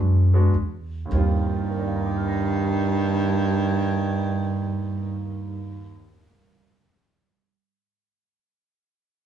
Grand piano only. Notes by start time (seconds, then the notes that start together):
Already playing: G#3 B3 D4 F#4
0.34 G#3 B3 D4 F#4
1.05 D#2 D#3
1.12 G3 C4
1.17 F4
1.71 A#4
1.78 D5
1.86 F5
1.96 A#5
2.06 D6
2.16 F6
2.28 A#6